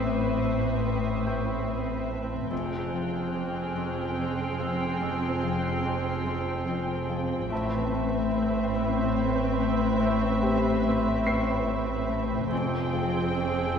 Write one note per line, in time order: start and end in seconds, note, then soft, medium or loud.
0.00 2.48 A1 soft
0.00 2.47 A2 soft
0.00 0.84 A2 soft
0.00 0.42 A3 soft
0.00 2.47 C4 soft
0.00 2.48 B4 soft
0.00 2.48 E5 soft
0.00 1.23 D6 soft
0.00 2.06 D#6 soft
0.00 1.23 A6 soft
0.00 2.06 C7 soft
0.43 2.08 A3 soft
0.85 1.25 A2 soft
1.26 1.66 A2 soft
1.26 3.72 G5 soft
1.26 3.72 G6 soft
1.68 2.55 A2 soft
2.10 2.55 A3 soft
2.50 7.48 F1 soft
2.50 3.32 F2 soft
2.50 7.47 F2 soft
2.50 7.48 C4 soft
2.50 7.48 G#4 soft
2.50 7.48 G5 soft
2.50 7.06 F6 soft
2.50 6.23 F#6 soft
2.93 4.58 F3 soft
3.34 3.74 F2 soft
3.76 4.17 F2 soft
4.18 5.00 F2 soft
4.18 7.06 C7 soft
4.59 5.42 F3 soft
4.59 7.06 E6 soft
5.01 5.83 F2 soft
5.43 7.08 F3 soft
5.84 6.25 F2 soft
6.26 6.67 F2 soft
6.68 7.55 F2 soft
7.09 7.54 F3 soft
7.50 12.47 A1 soft
7.50 8.33 A2 medium
7.50 12.48 A2 soft
7.50 12.47 C4 medium
7.50 12.47 B4 soft
7.50 12.48 E5 medium
7.50 9.98 A5 soft
7.91 9.56 A3 soft
8.34 8.74 A2 soft
8.75 9.16 A2 medium
9.17 9.98 A2 soft
9.57 10.40 A3 soft
10.00 10.83 A2 medium
10.42 12.08 A3 soft
10.42 12.89 G4 soft
10.42 12.89 G5 soft
10.84 11.25 A2 soft
11.26 11.65 A2 medium
11.26 13.72 B4 soft
11.26 13.72 C7 soft
11.66 12.54 A2 soft
12.09 12.54 A3 soft
12.50 13.79 F1 medium
12.50 13.79 F2 soft
12.50 13.33 F2 medium
12.50 13.79 C4 soft
12.50 13.79 G#4 soft
12.50 13.79 G5 medium
12.93 13.79 F3 soft
13.35 13.75 F2 soft